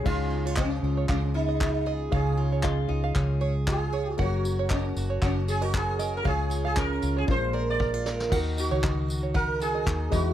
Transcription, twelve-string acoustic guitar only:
X:1
M:4/4
L:1/16
Q:"Swing 16ths" 1/4=116
K:Dbmix
V:1 name="Twelve-string acoustic guitar"
[D,A]2 E F E2 F2 A,2 A2 F2 A2 | [D,A]2 F2 E2 F2 A,2 A2 F2 A2 | [G,B]2 G2 D2 G2 D2 A B G2 B2 | [D,A]2 F2 D2 F2 B,,2 B2 E F B2 |
[K:Ebphr] E,2 E2 G2 E2 B2 G2 E2 =E,2 |]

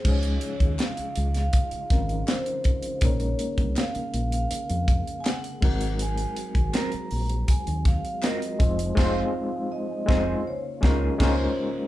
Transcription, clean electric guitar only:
X:1
M:4/4
L:1/8
Q:1/4=81
K:Db
V:1 name="Clean electric guitar"
z8 | z8 | z2 [G,CFB] z3 [G,CFB] z | [A,CEA] z2 [A,CEA] z [F,B,EA] [F,B,EA] z |]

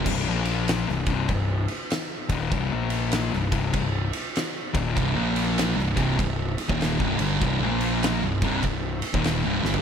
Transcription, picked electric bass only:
X:1
M:4/4
L:1/16
Q:"Swing" 1/4=98
K:Cm
V:1 name="Picked electric bass" clef=bass
C,,, B,,,4 C,,, C,,,2 C,,,2 z4 E,,,2 | C,,, B,,,4 C,,, C,,,2 C,,,2 z4 E,,,2 | C,,, B,,,4 C,,, C,,,2 C,,,2 z E,,,2 C,,, G,,,2 | C,,, B,,,4 C,,, C,,,2 C,,,2 z E,,,2 C,,, G,,,2 |]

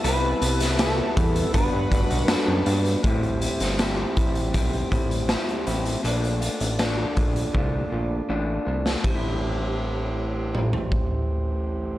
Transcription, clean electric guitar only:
X:1
M:4/4
L:1/8
Q:1/4=80
K:Ador
V:1 name="Clean electric guitar"
[C,G,B,E] [G,B,E] [C,G,B,E] [G,B,E] [G,,F,B,D] [F,B,D] [G,,F,B,D] [F,B,D] | [A,,G,CE] [G,CE] [A,,G,CE] [G,CE] [A,,G,CE] [G,CE] [A,,G,CE] [G,CE] | [_B,,A,D=F] [A,DF] [A,DF] [A,DF] [B,,A,DF] [A,DF] [A,DF] [A,DF] | [A,,G,CE]8 |]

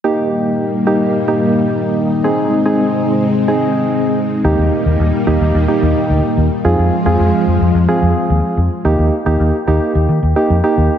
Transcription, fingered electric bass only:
X:1
M:4/4
L:1/16
Q:1/4=109
K:Eb
V:1 name="Fingered electric bass" clef=bass
z16 | z16 | E,, E,, z E,, E,, z E,, E,, E,, z E,, z D,, z E,, z | F,, F,, z F,, F,, z F,, F,, F,, z F,, z E,, z F,, z |
E,, E,, z E,, E,, z E,, z E,, E, E,, z F,, z E,, z |]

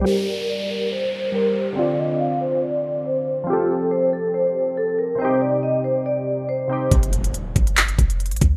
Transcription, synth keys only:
X:1
M:4/4
L:1/8
Q:1/4=140
K:Gm
V:1 name="Synth keys"
[G,GBd]6 [G,GBc]2 | [D,CFd]8 | [F,CGA]8 | [C,CEG]6- [C,CEG] [C,CEG] |
z8 |]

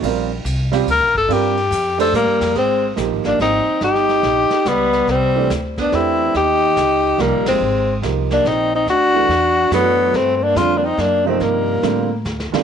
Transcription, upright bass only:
X:1
M:3/4
L:1/8
Q:"Swing" 1/4=142
K:Gm
V:1 name="Upright bass" clef=bass
B,,,2 C,,2 (3D,, B,,, G,,, | G,,2 F,,2 (3A,, G,, F,, | [K:Gphr] A,,,2 (3B,,, A,,, G,,, A,,, z | G,,,2 B,,, z ^C,,2 |
C,,2 D,,2 =E,,2 | E,,2 _D,,2 (3C,, B,,, G,,, | A,,,2 C,,2 B,,,2 | D,,2 =E,,2 ^F,,2 |
G,,2 F,,2 ^F,,2 | G,,2 =A,,2 D,, z |]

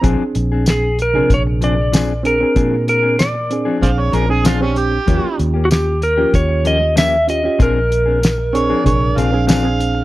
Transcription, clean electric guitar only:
X:1
M:4/4
L:1/16
Q:1/4=95
K:Bbmix
V:1 name="Clean electric guitar"
[F,CDA] z2 [CDA] z3 [F,CDA] z2 [F,CDA] z [F,CDA] z3 | [F,CDA] z2 [CDA] z3 [F,CDA] z2 [F,CDA] z [F,CDA] z3 | [F,B,_DG] z2 [B,DG] z3 [F,B,DG] z2 [F,B,DG] z [F,B,DG] z3 | [F,CDA] z2 [CDA] z3 [F,CDA] z2 [F,CDA] z [F,CDA] z3 |]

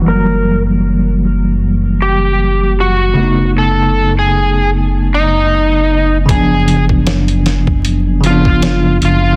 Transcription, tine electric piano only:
X:1
M:4/4
L:1/8
Q:"Swing 16ths" 1/4=77
K:C#phr
V:1 name="Tine electric piano" clef=bass
[E,F,=G,^A,]8 | [C,A,B,^D]8 | [C,^E,B,D]4- [C,E,B,D] [C,E,B,D]3 |]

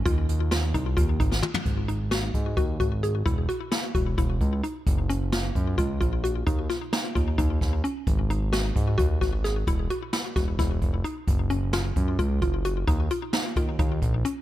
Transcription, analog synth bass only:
X:1
M:7/8
L:1/8
Q:1/4=131
K:Abmix
V:1 name="Analog synth bass" clef=bass
E,, E,, E,, C,, E,, A,,, z | A,,,3 A,, E,, A,,,2 | =E,,, z2 E,,, E,,, D,, z | G,,,3 G,, D,, B,,,2 |
E,, z2 E,, E,, E,, z | A,,,3 A,, E,, A,,,2 | =E,,, z2 E,,, E,,, F,,, z | G,,,3 G,, D,, G,,,2 |
E,, z2 E,, E,, B,,, z |]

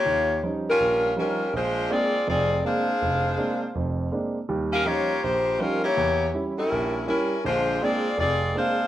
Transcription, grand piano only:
X:1
M:4/4
L:1/8
Q:"Swing" 1/4=162
K:Eblyd
V:1 name="Grand piano" clef=bass
E,,2 [F,G,_DE] z B,,,2 [F,G,DE] z | B,,,2 [_A,B,CD] z [F,,,F,,]2 [A,B,CD] z | F,,,2 [_A,B,CD] z [F,,,F,,]2 [A,B,CD] z | [E,,G,]2 [F,G,_DE] z B,,,2 [F,G,DE] z |
=E,,2 [G,^C=E] z B,,,2 [G,CE] z | [B,,,D,]2 [_A,B,CD] z F,,,2 [A,B,CD] z |]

